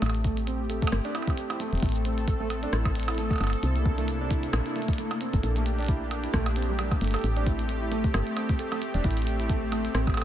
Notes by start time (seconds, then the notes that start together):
0.02 A1 A3 C4 G4, closed hi-hat, percussion blips
0.06 percussion blips
0.09 percussion blips
0.15 closed hi-hat
0.24 A3, kick, closed hi-hat
0.37 closed hi-hat
0.47 C4, closed hi-hat
0.69 A4, closed hi-hat
0.82 A3, kick, closed hi-hat
0.87 percussion blips
0.92 G1, cross-stick, closed hi-hat
1.05 D4, closed hi-hat
1.15 E4, closed hi-hat, percussion blips
1.22 percussion blips
1.27 kick, closed hi-hat, percussion blips
1.38 closed hi-hat
1.50 E4, percussion blips
1.60 A3, closed hi-hat, shaker
1.73 E1, closed hi-hat
1.75 closed hi-hat
1.78 closed hi-hat
1.80 A1 A4, kick, closed hi-hat
1.83 A3, closed hi-hat
1.86 closed hi-hat
1.89 closed hi-hat
1.92 closed hi-hat, shaker
2.05 C4, closed hi-hat
2.18 closed hi-hat
2.28 A4, kick, closed hi-hat
2.40 A3
2.50 closed hi-hat, percussion blips
2.63 D4, closed hi-hat
2.73 A1 E4, cross-stick, closed hi-hat
2.85 kick, percussion blips
2.95 closed hi-hat
3.00 closed hi-hat
3.03 closed hi-hat
3.08 E4, closed hi-hat, percussion blips
3.10 closed hi-hat
3.15 A3, closed hi-hat
3.18 closed hi-hat
3.31 kick, percussion blips
3.33 percussion blips
3.36 percussion blips
3.38 G1 A3, percussion blips
3.41 percussion blips
3.44 percussion blips
3.47 percussion blips
3.50 closed hi-hat, percussion blips
3.63 C2 C3 A#3 C4 D4 E4, closed hi-hat
3.76 closed hi-hat
3.86 A4, kick
3.98 A3, closed hi-hat
4.08 closed hi-hat
4.21 D4
4.31 E4, kick, closed hi-hat
4.43 closed hi-hat
4.53 A#1, cross-stick, closed hi-hat, percussion blips
4.66 E4, closed hi-hat
4.76 A3, closed hi-hat
4.82 closed hi-hat
4.88 kick, closed hi-hat
4.93 closed hi-hat
4.98 A3, closed hi-hat
5.11 percussion blips
5.21 C4, closed hi-hat
5.33 G1, kick, closed hi-hat, shaker
5.43 A#1 D4 G4 A4, closed hi-hat
5.56 A3, closed hi-hat, shaker
5.66 closed hi-hat
5.79 D4, closed hi-hat
5.81 closed hi-hat
5.83 closed hi-hat
5.85 closed hi-hat
5.87 closed hi-hat
5.88 E4, kick, closed hi-hat
6.11 closed hi-hat, percussion blips
6.24 E4, closed hi-hat
6.34 A#1 A3, kick, cross-stick, closed hi-hat
6.46 closed hi-hat, percussion blips
6.56 C4, closed hi-hat
6.62 closed hi-hat
6.69 G3
6.79 G3, closed hi-hat, percussion blips
6.91 kick, percussion blips
7.01 G1 A3, closed hi-hat
7.04 closed hi-hat
7.08 closed hi-hat
7.11 closed hi-hat
7.14 A4, closed hi-hat, percussion blips
7.16 closed hi-hat
7.19 closed hi-hat
7.22 A1, closed hi-hat
7.24 A3 C4, closed hi-hat
7.37 D4, closed hi-hat
7.46 E4, kick, closed hi-hat
7.59 closed hi-hat
7.69 closed hi-hat
7.82 E4
7.92 A3, closed hi-hat
8.04 kick, closed hi-hat
8.14 G1 A3, cross-stick, closed hi-hat, percussion blips
8.27 closed hi-hat
8.37 C4, closed hi-hat, percussion blips
8.49 kick, closed hi-hat
8.59 A4, closed hi-hat
8.72 A3, percussion blips
8.82 closed hi-hat, shaker
8.94 E1 D4, closed hi-hat
9.04 A1 E4, kick, closed hi-hat
9.11 closed hi-hat
9.17 closed hi-hat, shaker
9.22 closed hi-hat
9.27 closed hi-hat
9.39 E4, closed hi-hat
9.49 A3, kick, closed hi-hat
9.72 A3, closed hi-hat, percussion blips
9.85 closed hi-hat
9.95 A1 C4, cross-stick, closed hi-hat
10.07 kick, closed hi-hat, percussion blips
10.10 percussion blips
10.14 A4, closed hi-hat, percussion blips
10.17 percussion blips